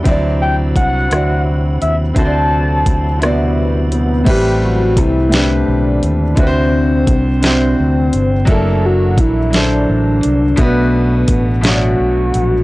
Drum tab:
CC |------|------|x-----|------|
HH |x-xx-x|x-xx-x|x-xx-x|x-xx-x|
SD |---r--|---r--|---o--|---o--|
BD |o-o---|o-o---|o-o---|o-o---|

CC |------|------|
HH |x-xx-x|x-xx-x|
SD |---o--|---o--|
BD |o-o---|o-o---|